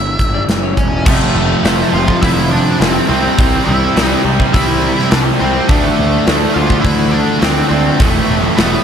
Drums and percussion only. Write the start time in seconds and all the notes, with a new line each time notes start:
0.19 kick, closed hi-hat
0.49 snare, closed hi-hat
0.77 kick, closed hi-hat
1.06 kick, crash
1.65 snare, open hi-hat
1.81 snare
2.08 kick
2.23 kick, open hi-hat
2.81 snare, open hi-hat
3.39 kick, open hi-hat
3.97 snare, open hi-hat
4.40 kick
4.54 kick, open hi-hat
4.99 snare
5.11 snare, open hi-hat
5.69 kick, open hi-hat
6.27 snare, open hi-hat
6.70 kick
6.85 kick, open hi-hat
7.42 snare, open hi-hat
8.00 kick, open hi-hat
8.58 snare, open hi-hat
8.73 snare